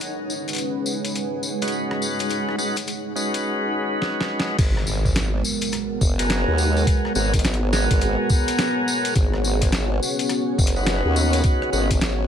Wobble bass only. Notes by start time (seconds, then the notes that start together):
4.59 G#1
6.01 F#1
6.48 D#2
7.16 G#1
7.44 G#1
7.91 G#1
9.16 G#1
10.58 F#1
11.05 D#2
11.73 G#1
12.02 G#1